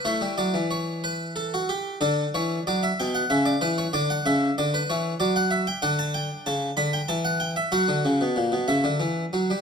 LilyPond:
<<
  \new Staff \with { instrumentName = "Harpsichord" } { \time 3/4 \key d \major \tempo 4 = 93 << { cis''8 d''8 cis''8 b'8 a'16 fis'16 g'8 | a'8 cis''8 d''16 e''16 g''16 fis''16 e''16 d''16 b'16 cis''16 | d''16 fis''16 e''8 d''16 b'16 cis''8 d''16 fis''16 e''16 g''16 | \key fis \phrygian fis''16 a''16 g''8 a''8 b''16 g''16 a''16 fis''16 g''16 e''16 |
fis''4. e''8 r4 | } \\ { e'2. | d'2 r4 | d'2. | d'2 r4 |
fis'2 r4 | } >> }
  \new Staff \with { instrumentName = "Harpsichord" } { \clef bass \time 3/4 \key d \major a16 g16 fis16 e2~ e16 | d8 e8 fis8 b,8 cis8 e8 | d8 cis8 d8 e8 fis4 | \key fis \phrygian d4 cis8 d8 e4 |
fis16 d16 cis16 b,16 ais,16 b,16 cis16 d16 e8 fis16 g16 | }
>>